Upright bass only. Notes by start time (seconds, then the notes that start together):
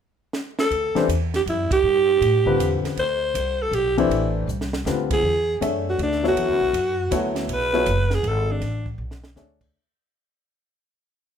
0.70 D2
0.95 muted upright bass stroke
1.08 E2
1.46 F#2
1.70 muted upright bass stroke
1.83 G2
2.21 A2
2.58 E2
2.83 muted upright bass stroke
2.97 D2
3.34 C2
3.71 B1
4.09 A1
4.48 C2
4.85 D2
5.23 E2
5.61 F#2
5.98 D2
6.36 E2
6.48 D2
6.61 B1
6.73 F#2
7.11 D2
7.48 B1
7.86 F#1
8.23 G#1
8.61 A1
8.98 B1
9.36 D2